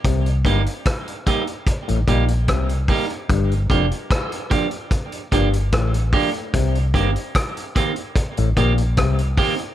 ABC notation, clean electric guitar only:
X:1
M:4/4
L:1/8
Q:1/4=74
K:Cdor
V:1 name="Clean electric guitar"
z [G,B,EG] z [G,B,EG] z [G,B,EG] z [G,B,EG] | z [F,B,DG] z [F,B,DG] z [F,B,DG] z [F,B,DG] | z [E,B,CG] z [E,B,CG] z [E,B,CG] z [E,B,CG] |]